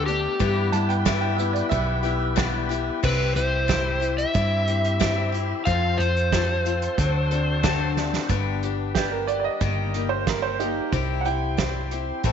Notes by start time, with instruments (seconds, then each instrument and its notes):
Already playing: picked electric bass D2, tonewheel organ B3 D4 G4 A4
0.06 steel-string acoustic guitar A3 B3 D4 G4, electric slide guitar G4, closed hi-hat
0.39 steel-string acoustic guitar G2 E3 G3 B3 E4 G4, picked electric bass G2, tonewheel organ B3 E4 G4 B4, kick, closed hi-hat
0.72 picked electric bass G2, steel-string acoustic guitar G3 B3 E4 G4, upright piano A5, closed hi-hat
0.89 upright piano G5, closed hi-hat
1.05 steel-string acoustic guitar G2 E3 G3 B3 E4 G4, upright piano E5, kick, snare, closed hi-hat
1.21 upright piano G5
1.37 steel-string acoustic guitar G3 B3 E4 G4, upright piano E5, closed hi-hat
1.53 upright piano D5, closed hi-hat
1.69 picked electric bass B1, steel-string acoustic guitar G3 B3 E4 G4, upright piano E5, kick, closed hi-hat
2.03 steel-string acoustic guitar G3 B3 E4 G4, closed hi-hat
2.36 steel-string acoustic guitar G2 E3 G3 B3 E4 G4, kick, snare, closed hi-hat
2.69 steel-string acoustic guitar G3 B3 E4 G4, closed hi-hat
3.02 picked electric bass C2, steel-string acoustic guitar C3 G3 C4 E4 G4, tonewheel organ C4 E4 G4 E5, electric slide guitar B4, kick, crash
3.35 picked electric bass C2, steel-string acoustic guitar C4 E4 G4, electric slide guitar C5, closed hi-hat
3.68 steel-string acoustic guitar C3 G3 C4 E4 G4, kick, snare, closed hi-hat
4.00 steel-string acoustic guitar C4 E4 G4, closed hi-hat
4.18 electric slide guitar E5, closed hi-hat
4.34 picked electric bass G2, steel-string acoustic guitar G3 C4 E4 G4, kick, closed hi-hat
4.68 steel-string acoustic guitar C4 E4 G4, closed hi-hat
4.85 closed hi-hat
5.00 steel-string acoustic guitar C3 G3 C4 E4 G4, kick, snare, closed hi-hat
5.32 steel-string acoustic guitar C4 E4 G4, closed hi-hat
5.65 picked electric bass F2, steel-string acoustic guitar F3 C4 F4 A4, tonewheel organ C4 F4 A4 C5, electric slide guitar F5, kick, closed hi-hat
5.98 picked electric bass F2, steel-string acoustic guitar C4 F4 A4, electric slide guitar C5, closed hi-hat
6.17 closed hi-hat
6.32 steel-string acoustic guitar F3 C4 F4 A4, kick, snare, closed hi-hat
6.65 steel-string acoustic guitar C4 F4 A4, closed hi-hat
6.82 closed hi-hat
6.97 picked electric bass D2, steel-string acoustic guitar F#3 C4 D4 A4, tonewheel organ D4 F#4 A4 C5, kick, closed hi-hat
7.31 steel-string acoustic guitar C4 D4 A4, closed hi-hat
7.63 steel-string acoustic guitar D3 F#3 C4 D4 A4, kick, snare, closed hi-hat
7.97 tonewheel organ G3, steel-string acoustic guitar C4 D4 A4, snare
8.04 tonewheel organ A3 B3
8.09 tonewheel organ C4 D4
8.13 tonewheel organ E4 F4, snare
8.20 tonewheel organ G4 A4
8.26 picked electric bass G1, steel-string acoustic guitar G2 D3 G3, tonewheel organ B4 C5, kick, closed hi-hat
8.30 steel-string acoustic guitar B3 D4 G4, tonewheel organ B3 D4 G4 B4
8.63 steel-string acoustic guitar G3 B3 D4 G4, closed hi-hat
8.95 steel-string acoustic guitar G3 B3 D4 G4, upright piano G4, kick, snare, closed hi-hat
9.11 upright piano A#4
9.28 steel-string acoustic guitar G3 B3 D4 G4, upright piano D5, closed hi-hat
9.40 upright piano D5
9.44 upright piano D#5
9.61 picked electric bass G1, steel-string acoustic guitar G2 D#3 G3 A#3 D#4 G4, tonewheel organ A#3 D#4 G4 A#4, kick, closed hi-hat
9.94 steel-string acoustic guitar G3 A#3 D#4 G4, closed hi-hat
10.09 upright piano C5
10.27 steel-string acoustic guitar G3 A#3 D#4 G4, upright piano A#4, kick, snare, closed hi-hat
10.42 upright piano C5
10.59 steel-string acoustic guitar G3 A#3 D#4 G4, upright piano D#4 G4, closed hi-hat
10.91 picked electric bass C2, steel-string acoustic guitar C3 G3 C4 E4 G4, tonewheel organ C4 E4 G4 C5, kick, closed hi-hat
11.21 steel-string acoustic guitar G4, upright piano F#5
11.25 steel-string acoustic guitar C4 E4, upright piano G5, closed hi-hat
11.57 steel-string acoustic guitar G3 C4 E4 G4, kick, snare, closed hi-hat
11.91 steel-string acoustic guitar C4 E4 G4, closed hi-hat
12.24 picked electric bass A1, steel-string acoustic guitar A2 E3 A3 C4 E4 A4, tonewheel organ C4 E4 A4 C5, kick, closed hi-hat